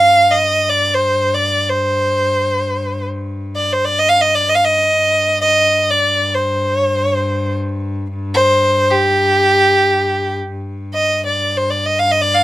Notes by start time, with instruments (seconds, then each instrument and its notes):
Already playing: cello G2, violin F5
0.31 violin D#5
0.69 violin D5
0.94 violin C5
1.34 violin D5
1.69 violin C5
3.56 violin D5
3.72 violin C5
3.85 violin D5
3.99 violin D#5
4.09 violin F5
4.21 violin D#5
4.34 violin D5
4.49 violin D#5
4.55 violin F5
4.64 violin D#5
4.95 cello G2
5.41 violin D#5
5.90 violin D5
6.34 violin C5
6.78 violin C#5
6.89 violin C5
7.02 violin C#5
7.14 violin C5
8.34 violin C5
8.90 violin G4
10.50 cello G2
10.94 violin D#5
11.26 violin D5
11.57 violin C5
11.70 violin D5
11.86 violin D#5
11.99 violin F5
12.11 violin D#5
12.21 violin D5
12.34 violin F5